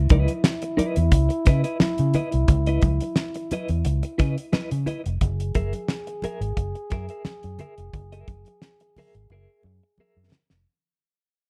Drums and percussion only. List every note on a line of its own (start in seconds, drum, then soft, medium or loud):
0.09 kick loud
0.09 closed hi-hat medium
0.09 muted conga soft
0.09 high conga medium
0.28 closed hi-hat medium
0.28 high conga medium
0.44 snare loud
0.62 closed hi-hat soft
0.78 closed hi-hat medium
0.78 muted conga soft
0.78 high conga medium
0.96 closed hi-hat medium
1.12 kick loud
1.12 closed hi-hat medium
1.30 closed hi-hat soft
1.45 kick loud
1.45 snare soft
1.45 closed hi-hat medium
1.45 muted conga soft
1.64 closed hi-hat medium
1.80 snare loud
1.80 muted conga soft
1.80 high conga medium
1.98 closed hi-hat medium
2.14 closed hi-hat medium
2.14 muted conga soft
2.14 low conga medium
2.32 closed hi-hat medium
2.48 kick loud
2.48 closed hi-hat medium
2.48 low conga medium
2.66 closed hi-hat medium
2.81 kick medium
2.81 closed hi-hat medium
2.81 muted conga soft
2.81 high conga medium
3.01 closed hi-hat medium
3.01 high conga medium
3.16 snare loud
3.16 muted conga soft
3.34 closed hi-hat soft
3.51 closed hi-hat medium
3.51 high conga medium
3.69 closed hi-hat medium
3.85 closed hi-hat medium
3.85 muted conga soft
4.03 closed hi-hat soft
4.19 kick loud
4.19 snare soft
4.19 closed hi-hat medium
4.19 muted conga soft
4.38 closed hi-hat medium
4.53 snare loud
4.53 muted conga soft
4.53 high conga medium
4.71 closed hi-hat medium
4.87 closed hi-hat medium
4.87 muted conga soft
4.87 low conga medium
5.06 closed hi-hat medium
5.21 kick loud
5.21 closed hi-hat medium
5.21 low conga medium
5.40 closed hi-hat medium
5.55 kick medium
5.55 closed hi-hat medium
5.55 muted conga soft
5.55 high conga medium
5.73 closed hi-hat medium
5.73 high conga medium
5.88 snare loud
5.88 muted conga soft
6.07 closed hi-hat soft
6.22 closed hi-hat medium
6.22 muted conga soft
6.22 high conga medium
6.42 closed hi-hat medium
6.57 kick medium
6.57 closed hi-hat medium
6.57 muted conga soft
6.75 closed hi-hat soft
6.90 kick loud
6.90 snare soft
6.90 closed hi-hat medium
7.09 closed hi-hat medium
7.25 snare loud
7.25 muted conga soft
7.25 high conga medium
7.43 closed hi-hat medium
7.59 closed hi-hat medium
7.59 muted conga soft
7.59 low conga medium
7.78 closed hi-hat medium
7.93 kick loud
7.93 closed hi-hat medium
7.93 low conga medium
8.12 closed hi-hat medium
8.28 kick loud
8.28 closed hi-hat medium
8.28 muted conga soft
8.28 high conga medium
8.45 closed hi-hat soft
8.45 high conga medium
8.62 snare loud
8.62 muted conga soft
8.80 closed hi-hat soft
8.96 open hi-hat medium
8.96 high conga medium
8.96 low conga medium
9.15 closed hi-hat soft
9.30 muted conga soft
9.63 muted conga soft
9.98 muted conga soft
9.98 high conga medium
10.31 snare loud
10.31 muted conga soft
10.31 low conga medium
10.50 snare medium